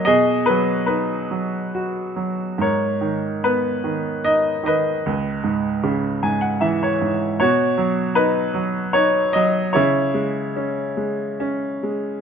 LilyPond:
<<
  \new Staff \with { instrumentName = "Grand piano" } { \time 3/4 \key cis \dorian \tempo 4 = 74 << { dis''8 b'8 b'4 r4 | cis''4 b'4 dis''8 dis''8~ | dis''4. gis''16 fis''16 e''16 cis''8. | cis''4 b'4 cis''8 dis''8 |
cis''2~ cis''8 r8 | } \\ { gis'4. r4. | ais'4. r4 b'8~ | b'4. r4. | fis'4. r4. |
e'2~ e'8 r8 | } >> }
  \new Staff \with { instrumentName = "Grand piano" } { \clef bass \time 3/4 \key cis \dorian b,8 fis8 dis'8 fis8 fis'8 fis8 | gis,8 dis8 b8 dis8 dis'8 dis8 | cis,8 gis,8 cis8 gis,8 e8 gis,8 | b,8 fis8 dis'8 fis8 dis'8 fis8 |
cis8 gis8 cis'8 gis8 cis'8 gis8 | }
>>